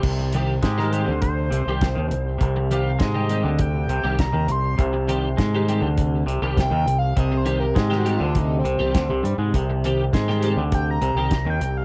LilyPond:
<<
  \new Staff \with { instrumentName = "Analog synth lead" } { \time 4/4 \key c \minor \tempo 4 = 101 r4 g'16 bes'16 c''8 c''2 | r8 f''8 ees''4 g''4 bes''8 c'''8 | r2. \tuplet 3/2 { g''4 f''8 } | \tuplet 3/2 { ees''8 c''8 bes'8 g'8 fis'8 f'8 ees'8 c'8 c'8~ } c'8. r16 |
r2 g''16 bes''4 g''8 f''16 | }
  \new Staff \with { instrumentName = "Analog synth pad" } { \time 4/4 \key c \minor <c c' g'>1~ | <c c' g'>1~ | <c c' g'>1~ | <c c' g'>1~ |
<c c' g'>1 | }
  \new Staff \with { instrumentName = "Clean electric guitar" } { \time 4/4 \key c \minor r8 <ees g c' g'>16 r8 <ees g c' g'>16 <ees g c' g'>16 r4 <ees g c' g'>16 r4 | r8 <ees g c' g'>16 r8 <ees g c' g'>16 <ees g c' g'>16 r4 <ees g c' g'>16 r4 | r8 <ees g c' g'>16 r8 <ees g c' g'>16 <ees g c' g'>16 r4 <ees g c' g'>16 r4 | r8 <ees g c' g'>16 r8 <ees g c' g'>16 <ees g c' g'>16 r4 <ees g c' g'>16 r4 |
r8 <ees g c' g'>16 r8 <ees g c' g'>16 <ees g c' g'>16 r4 <ees g c' g'>16 r4 | }
  \new Staff \with { instrumentName = "Clean electric guitar" } { \clef bass \time 4/4 \key c \minor c4 aes8. d8. c16 c8 ees16 c8 | c4 aes8. d8. c16 c8 ees16 c8 | c4 aes8. d8. c16 c8 ees16 c8 | c4 aes8. d8. c16 c16 d16 c16 g16 aes16 |
c4 aes8. d8. c16 c8 ees16 c8 | }
  \new Staff \with { instrumentName = "Fingered electric bass" } { \clef bass \time 4/4 \key c \minor c,4 aes,8. d,8. c,16 c,8 ees,16 c,8 | c,4 aes,8. d,8. c,16 c,8 ees,16 c,8 | c,4 aes,8. d,8. c,16 c,8 ees,16 c,8 | c,4 aes,8. d,8. c,16 c,16 d,16 c,16 g,16 aes,16 |
c,4 aes,8. d,8. c,16 c,8 ees,16 c,8 | }
  \new DrumStaff \with { instrumentName = "Drums" } \drummode { \time 4/4 <cymc bd>8 hh8 <hh bd sn>16 sn16 hh8 <hh bd>8 hh8 <hh bd sn>8 hh8 | <hh bd>8 hh8 <hh bd sn>8 hh8 <hh bd>8 hh8 <hh bd sn>8 hh8 | <hh bd>8 hh8 <hh bd sn>8 hh8 <hh bd>8 hh8 <hh bd sn>8 hh8 | <hh bd>8 hh8 <hh bd sn>16 sn16 hh8 <hh bd>8 hh8 <hh bd sn>8 hh8 |
<hh bd>8 hh8 <hh bd sn>16 sn16 hh8 <hh bd>8 hh8 <hh bd sn>8 hh8 | }
>>